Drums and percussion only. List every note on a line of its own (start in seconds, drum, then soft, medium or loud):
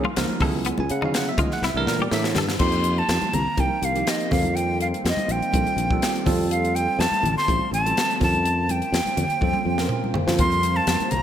0.04 high conga medium
0.16 snare loud
0.16 closed hi-hat medium
0.29 high conga medium
0.40 kick medium
0.40 open hi-hat medium
0.40 low conga medium
0.65 closed hi-hat medium
0.78 high conga medium
0.89 closed hi-hat medium
1.02 low conga medium
1.14 snare loud
1.14 closed hi-hat medium
1.38 kick loud
1.38 closed hi-hat medium
1.38 high conga medium
1.38 low conga medium
1.51 snare soft
1.63 snare medium
1.87 snare medium
1.99 high conga medium
2.11 snare medium
2.24 snare medium
2.35 snare medium
2.35 low conga medium
2.49 snare medium
2.59 kick medium
2.59 crash medium
2.72 closed hi-hat soft
2.84 closed hi-hat medium
3.09 snare loud
3.09 closed hi-hat medium
3.21 closed hi-hat soft
3.21 high conga medium
3.33 closed hi-hat medium
3.33 low conga medium
3.58 kick medium
3.58 closed hi-hat medium
3.58 high conga medium
3.83 closed hi-hat medium
3.96 closed hi-hat soft
4.07 snare loud
4.07 closed hi-hat medium
4.21 closed hi-hat soft
4.31 kick medium
4.31 snare soft
4.31 open hi-hat medium
4.31 low conga medium
4.43 closed hi-hat soft
4.43 high conga medium
4.57 closed hi-hat medium
4.81 closed hi-hat soft
4.94 closed hi-hat soft
5.06 snare medium
5.06 closed hi-hat medium
5.17 closed hi-hat soft
5.17 high conga medium
5.29 closed hi-hat medium
5.42 closed hi-hat soft
5.53 kick medium
5.53 closed hi-hat medium
5.53 high conga medium
5.67 closed hi-hat soft
5.78 closed hi-hat medium
5.91 kick medium
6.02 snare loud
6.02 closed hi-hat medium
6.16 closed hi-hat soft
6.26 kick medium
6.26 snare soft
6.26 open hi-hat medium
6.26 low conga medium
6.38 high conga medium
6.51 closed hi-hat medium
6.65 closed hi-hat soft
6.76 closed hi-hat medium
7.00 snare loud
7.00 closed hi-hat medium
7.12 closed hi-hat soft
7.12 high conga medium
7.24 closed hi-hat medium
7.24 low conga medium
7.38 snare soft
7.48 kick medium
7.48 closed hi-hat medium
7.48 high conga medium
7.74 closed hi-hat medium
7.86 closed hi-hat soft
7.97 snare loud
7.97 closed hi-hat medium
8.11 closed hi-hat soft
8.21 kick medium
8.21 snare soft
8.21 open hi-hat medium
8.21 low conga medium
8.34 closed hi-hat soft
8.34 high conga medium
8.45 closed hi-hat medium
8.69 closed hi-hat medium
8.69 high conga medium
8.82 closed hi-hat soft
8.94 snare loud
8.94 closed hi-hat medium
9.06 closed hi-hat soft
9.06 high conga medium
9.17 closed hi-hat medium
9.17 low conga medium
9.30 closed hi-hat soft
9.41 kick medium
9.41 high tom medium
9.53 high tom soft
9.78 snare medium
9.89 mid tom medium
9.89 high conga soft
10.04 high conga medium
10.14 floor tom medium
10.14 low conga medium
10.28 snare medium
10.28 low conga medium
10.38 kick loud
10.38 closed hi-hat medium
10.52 closed hi-hat soft
10.63 closed hi-hat medium
10.87 snare loud
10.87 closed hi-hat medium
11.00 closed hi-hat soft
11.00 high conga medium
11.11 closed hi-hat medium
11.11 low conga medium